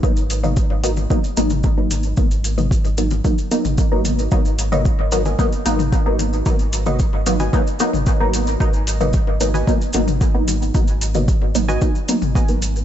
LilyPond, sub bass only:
\new Staff \with { instrumentName = "Sub bass" } { \clef bass \time 4/4 \key gis \minor \tempo 4 = 112 gis,,2 r8 gis,,4. | gis,,2 r8. gis,,4~ gis,,16 | gis,,2 r8 gis,,4. | gis,,2 r8. gis,,4~ gis,,16 |
gis,,2 r8 gis,,4. | gis,,2 r8. gis,,4~ gis,,16 | }